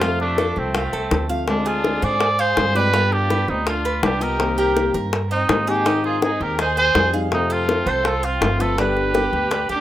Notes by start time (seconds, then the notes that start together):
Already playing: F2 C4 F4
0.01 C3 F3 A3 C4 F4, high bongo
0.20 A3 D4, high bongo
0.38 F3 A3 C4 F4 A4, high bongo
0.56 C2 A3 C4, high bongo
0.75 A3 C4 F4, muted nylon-string guitar stroke, high bongo
0.93 C2 A4, high bongo
1.11 D2 F3 A3 C4 F4, high bongo, low bongo
1.29 F3 A3 C4 F4 F5
1.47 D3 G#3 C4 D4 F4, high bongo
1.66 D4 F4 G#4
1.84 D3 G#3 C4 F4, high bongo
2.02 G#2 G#4 C5 D5
2.20 muted nylon-string guitar stroke, high bongo
2.39 G#4 C5 F5
2.57 G2 D3 G#3 C4 F4, high bongo, low bongo
2.75 G#3 C4 F4 G4 B4 D5
2.93 G3 B3 F4, high bongo
3.11 D4 G4, high bongo
3.30 G3 B3 F4 B4, high bongo
3.47 D2 C4 D#4, high bongo
3.66 D4 F4, muted nylon-string guitar stroke, high bongo
3.85 B4, high bongo
4.02 C2 G3 B3 D4 F4 G4, high bongo, low bongo
4.20 B3 F4 G4 A#4 D#5
4.39 C3 D#3 A#3 C4 G4, high bongo
4.57 G4 A#4
4.76 D#3 A#3 C4 G4, high bongo
4.94 G2 A#4
5.12 muted nylon-string guitar stroke, high bongo
5.30 C4 D#4 D#5
5.49 G#2 D#3 A#3 C4 G4, high bongo, low bongo
5.67 D#3 A#3 C4 D#4 G4 G#4
5.86 D#3 C4 D#4 G#4, high bongo
6.04 F4 G#4, high bongo
6.22 C4 D#4 G#4, high bongo
6.40 D#2 G4 A#4, high bongo
6.59 D#4 G#4 C5, muted nylon-string guitar stroke, high bongo
6.77 G#4 C5 G5, high bongo
6.95 F2 G3 C4 D#4 G#4, high bongo, low bongo
7.13 G3 C4 D#4 G#4 F5
7.31 C3 F3 A3 C4 D#4 F4, high bongo
7.50 C4 F4 A4
7.67 F3 A3 C4 F4, high bongo
7.86 C2 A4 C5
8.05 F4 A4, muted nylon-string guitar stroke, high bongo
8.23 C4 F4 F5
8.41 G1 F3 A3 C4 F4, high bongo, low bongo
8.59 F3 A3 C4 F4 A4 B4
8.78 D3 G3 B3 D4 G4 B4, high bongo
8.97 high bongo
9.14 G3 B3 D4 G4, high bongo
9.33 D2, high bongo
9.51 D4, muted nylon-string guitar stroke, high bongo
9.69 D2 D4 G4, high bongo